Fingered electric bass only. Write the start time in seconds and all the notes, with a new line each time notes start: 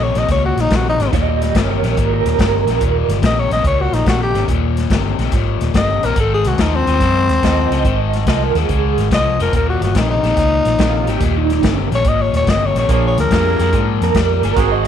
Already playing: A#1
0.15 A#1
0.29 C#2
0.57 A#1
0.71 A#1
0.99 G#1
1.13 D#1
1.55 G1
1.83 A#1
1.97 G#1
2.25 D#1
2.39 G1
2.66 A#1
2.80 D#1
3.08 G1
3.22 A#1
3.50 A#1
3.64 C#2
3.93 A#1
4.06 A#1
4.34 G#1
4.48 D#1
4.90 G1
5.18 A#1
5.32 G#1
5.61 D#1
5.74 G1
6.03 A#1
6.16 G#1
6.45 C2
6.58 D#2
6.87 D#2
7.00 F#2
7.28 D#2
7.42 D#2
7.70 C#2
7.85 G#1
8.27 C2
8.55 D#2
8.69 C#2
8.98 G#1
9.11 C2
9.39 F1
9.53 D#1
9.81 G1
9.95 A#1
10.23 A#1
10.37 C#2
10.65 A#1
10.79 A#1
11.08 G#1
11.21 D#1
11.63 G1
11.91 A#1
12.05 G#1
12.33 D#1
12.47 G1
12.74 A#1
12.89 A#1
13.17 D2
13.30 F2
13.59 F2
13.72 G#2
14.01 F2
14.15 F2
14.43 G1
14.56 G#1